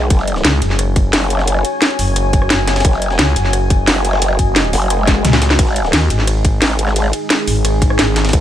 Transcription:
0.10 wobble bass F#1, ambient pad F#4 C#5 G#5, kick, closed hi-hat, ride
0.19 snare
0.28 closed hi-hat, ride
0.36 snare
0.45 fm bass C#2, snare, closed hi-hat, ride
0.53 snare
0.62 fm bass F#1, snare, closed hi-hat, ride
0.70 snare
0.79 cross-stick, closed hi-hat, ride
0.96 kick, closed hi-hat, ride
1.13 wobble bass F#1, snare, closed hi-hat, open hi-hat
1.22 cross-stick, snare
1.30 closed hi-hat, ride
1.39 cross-stick, snare
1.47 closed hi-hat, ride
1.65 closed hi-hat, ride
1.82 snare, closed hi-hat, ride
1.90 ride
1.99 fm bass F#1, open hi-hat, ride
2.08 ride
2.16 cross-stick, closed hi-hat, ride
2.33 kick, closed hi-hat, ride
2.42 cross-stick
2.50 fm bass F#1, snare, closed hi-hat, ride
2.59 snare
2.68 snare, closed hi-hat, ride
2.76 snare, ride
2.80 snare, ride
2.85 wobble bass F#1, ambient pad D#5, kick, closed hi-hat, ride
2.93 snare
3.02 closed hi-hat, ride
3.10 snare
3.19 fm bass C#2, snare, closed hi-hat, ride
3.28 snare
3.36 fm bass F#1, snare, closed hi-hat, ride
3.45 snare
3.53 cross-stick, closed hi-hat, ride
3.70 kick, closed hi-hat, ride
3.87 wobble bass F#1, snare, closed hi-hat, open hi-hat
3.96 snare
4.05 closed hi-hat, ride
4.13 cross-stick, snare
4.22 closed hi-hat, ride
4.39 fm bass F#1, kick, closed hi-hat, ride
4.56 snare, closed hi-hat, ride
4.65 ride
4.73 wobble bass F#1, snare, open hi-hat, ride
4.82 ride
4.90 cross-stick, closed hi-hat, ride, swell
5.07 kick, snare, closed hi-hat, ride
5.25 fm bass C#2, snare, closed hi-hat, mid tom, ride
5.33 snare, ride
5.42 snare, closed hi-hat, ride
5.50 snare
5.59 wobble bass G#1, ambient pad G#3 D#4 G#4, kick, closed hi-hat, ride
5.67 snare
5.76 closed hi-hat, ride
5.85 snare
5.93 fm bass D#2, snare, closed hi-hat, ride
6.02 snare
6.10 fm bass G#1, snare, closed hi-hat, ride
6.19 snare
6.27 cross-stick, closed hi-hat, ride
6.45 kick, closed hi-hat, ride
6.62 wobble bass G#1, snare, closed hi-hat, open hi-hat, ride
6.70 cross-stick, snare
6.79 closed hi-hat, ride
6.87 cross-stick, snare
6.96 closed hi-hat, ride
7.13 closed hi-hat, ride
7.30 snare, closed hi-hat, ride
7.39 ride
7.47 fm bass G#1, open hi-hat, ride
7.56 ride
7.65 cross-stick, closed hi-hat, ride
7.82 kick, closed hi-hat, ride
7.90 cross-stick
7.99 fm bass G#1, snare, closed hi-hat, ride
8.08 snare
8.16 snare, closed hi-hat, ride
8.25 snare, ride
8.29 snare, ride
8.33 wobble bass G#1, ambient pad C#4, kick, closed hi-hat, ride

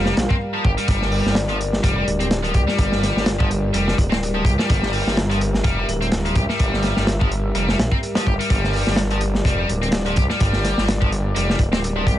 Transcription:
Already playing: detuned saw bass F1, analog synth pad G3 G4 A#4 F5
0.05 distorted electric guitar G3, snare
0.17 detuned saw bass A#1, snare, closed hi-hat
0.30 distorted electric guitar C4, kick
0.54 distorted electric guitar F3
0.65 detuned saw bass G1, distorted electric guitar G4, kick
0.78 distorted electric guitar G3, closed hi-hat
0.88 detuned saw bass G1, distorted electric guitar G3, analog synth pad D5, kick, closed hi-hat
1.02 snare
1.12 open hi-hat
1.26 detuned saw bass G1, snare
1.35 snare, closed hi-hat
1.49 distorted electric guitar F3, closed hi-hat
1.61 closed hi-hat
1.73 snare
1.83 detuned saw bass F1, distorted electric guitar G3, kick, closed hi-hat
1.96 distorted electric guitar G3
2.07 detuned saw bass D1, closed hi-hat
2.20 distorted electric guitar C4, closed hi-hat
2.31 snare, closed hi-hat
2.44 distorted electric guitar F3, closed hi-hat
2.54 detuned saw bass D2, distorted electric guitar G4, kick, closed hi-hat
2.68 distorted electric guitar G3, snare
2.78 detuned saw bass G1, distorted electric guitar G3, kick, closed hi-hat
2.92 snare
3.03 snare, closed hi-hat
3.16 detuned saw bass G1, snare
3.26 snare, closed hi-hat
3.39 distorted electric guitar F3, kick
3.51 closed hi-hat
3.74 detuned saw bass F1, distorted electric guitar G3, closed hi-hat
3.87 distorted electric guitar G3, snare
3.98 detuned saw bass D1, kick, closed hi-hat
4.11 distorted electric guitar C4, snare
4.23 closed hi-hat
4.35 distorted electric guitar F3
4.45 detuned saw bass D2, distorted electric guitar G4, kick, closed hi-hat
4.58 distorted electric guitar G3, snare
4.69 detuned saw bass G1, distorted electric guitar G3, analog synth pad E5, kick, closed hi-hat
4.83 snare
4.93 open hi-hat
5.06 detuned saw bass G1, snare
5.17 snare, closed hi-hat
5.30 distorted electric guitar F3, closed hi-hat
5.41 closed hi-hat
5.54 snare
5.64 detuned saw bass F1, distorted electric guitar G3, kick, closed hi-hat
5.78 distorted electric guitar G3
5.88 detuned saw bass D1, closed hi-hat
6.01 distorted electric guitar C4, closed hi-hat
6.12 snare, closed hi-hat
6.25 distorted electric guitar F3, closed hi-hat
6.35 detuned saw bass D2, distorted electric guitar G4, kick, closed hi-hat
6.49 distorted electric guitar G3, snare
6.59 detuned saw bass G1, distorted electric guitar G3, kick, closed hi-hat
6.74 snare
6.83 snare, closed hi-hat
6.97 detuned saw bass G1, snare
7.07 snare, closed hi-hat
7.20 distorted electric guitar F3, kick
7.32 closed hi-hat
7.55 detuned saw bass F1, distorted electric guitar G3, closed hi-hat
7.68 distorted electric guitar G3, snare
7.79 detuned saw bass A#1, snare, closed hi-hat
7.92 distorted electric guitar C4, kick
8.03 closed hi-hat
8.15 distorted electric guitar F3, snare, closed hi-hat
8.26 detuned saw bass G1, distorted electric guitar G4, kick
8.39 distorted electric guitar G3, closed hi-hat
8.50 detuned saw bass G1, distorted electric guitar G3, analog synth pad D5, kick, closed hi-hat
8.64 snare
8.73 open hi-hat
8.87 detuned saw bass G1, snare
8.96 snare, closed hi-hat
9.10 distorted electric guitar F3, closed hi-hat
9.21 closed hi-hat
9.35 snare
9.45 detuned saw bass F1, distorted electric guitar G3, kick, closed hi-hat
9.59 distorted electric guitar G3
9.69 detuned saw bass D1, closed hi-hat
9.82 distorted electric guitar C4, closed hi-hat
9.92 snare, closed hi-hat
10.06 distorted electric guitar F3, closed hi-hat
10.16 detuned saw bass D2, distorted electric guitar G4, kick, closed hi-hat
10.30 distorted electric guitar G3, snare
10.40 detuned saw bass G1, distorted electric guitar G3, kick, closed hi-hat
10.53 snare
10.64 snare, closed hi-hat
10.78 detuned saw bass G1, snare
10.88 snare, closed hi-hat
11.01 distorted electric guitar F3, kick
11.12 closed hi-hat
11.36 detuned saw bass F1, distorted electric guitar G3, closed hi-hat
11.49 distorted electric guitar G3, snare
11.59 detuned saw bass D1, kick, closed hi-hat
11.73 distorted electric guitar C4, snare
11.84 closed hi-hat
11.96 distorted electric guitar F3
12.07 detuned saw bass D2, distorted electric guitar G4, kick, closed hi-hat

